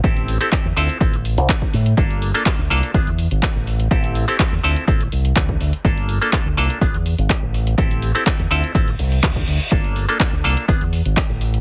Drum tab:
HH |xxoxx-oxxxoxx-ox|xxoxx-oxxxoxx-ox|xxoxx-oxxxoxx-ox|xxoxx-oxxxoxx-ox|
CP |----x-------x---|----x-------x---|----x-------x---|----x-------x---|
BD |o---o---o---oo--|o---o---o---o---|o---o---o---oo--|o---o---o---o---|

HH |xxoxxxoxxxooxxox|xxoxx-oxxxoxx-ox|
CP |----x-------x---|----x-------x---|
BD |o---o---o---oo--|o---o---o---o---|